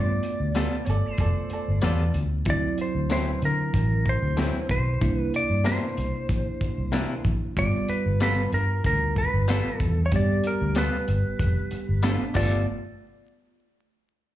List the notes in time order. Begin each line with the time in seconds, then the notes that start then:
Already playing: G2 A3 B3 F4 D5
0.23 closed hi-hat
0.40 D2
0.55 G3 B3 F4 A4, snare, closed hi-hat, tambourine
0.85 G1 C#5, closed hi-hat
0.89 A4 D5
1.13 C5
1.18 F1 A4 D5, kick, closed hi-hat
1.50 A4 D5, muted fingered electric bass stroke, closed hi-hat
1.68 G1
1.81 E2 G3 B3 F4 A4 C#5, snare, closed hi-hat, tambourine
1.86 D5
2.14 D2, closed hi-hat
2.45 D2 F#3 C4 E4, kick, closed hi-hat
2.50 D5
2.78 C5, muted fingered electric bass stroke, closed hi-hat
2.95 D2
3.10 D3 F#3 C4 E4 C5, snare, closed hi-hat, tambourine
3.42 D3 A#4, closed hi-hat
3.74 A1, kick, closed hi-hat
4.06 C5, kick, closed hi-hat
4.22 D2
4.37 D3 F#3 C4 E4, snare, closed hi-hat, tambourine
4.69 B1 C5, kick, closed hi-hat
5.01 C2 A#3 D4 E4, kick, closed hi-hat
5.17 B4
5.34 D5, closed hi-hat
5.50 G2
5.64 C3 A#3 D4 E4 C5, snare, closed hi-hat, tambourine
5.97 C2, closed hi-hat
6.29 A#1, kick, closed hi-hat
6.61 muted fingered electric bass stroke, kick, closed hi-hat
6.78 C2
6.92 C3 A#3 D4 E4, snare, closed hi-hat, tambourine
7.25 A#1, kick, closed hi-hat
7.57 G1 G3 B3 F4 D5, kick, closed hi-hat
7.88 B4, muted fingered electric bass stroke, closed hi-hat
8.06 G1
8.20 G3 B3 F4 A4 B4, snare, closed hi-hat, tambourine
8.52 G2 A#4, closed hi-hat
8.84 D2 A#4, kick, closed hi-hat
9.16 B4, kick, closed hi-hat
9.34 G1
9.48 G3 B3 F4 A4, snare, closed hi-hat, tambourine
9.78 E2 A4, kick, closed hi-hat
10.06 C#5
10.11 G2 G3 B3 G4, kick, closed hi-hat
10.16 D5
10.44 A#4, closed hi-hat
10.62 D2
10.75 G3 B3 F4 A4 B4, snare, closed hi-hat, tambourine
11.08 G1, closed hi-hat
11.39 F1, kick, closed hi-hat
11.71 muted fingered electric bass stroke, closed hi-hat
11.89 G1
12.03 G3 A3 B3 D4 F4 A4, snare, closed hi-hat, tambourine
12.34 G1 G3 A3 B3 F4 A4 D5, kick, crash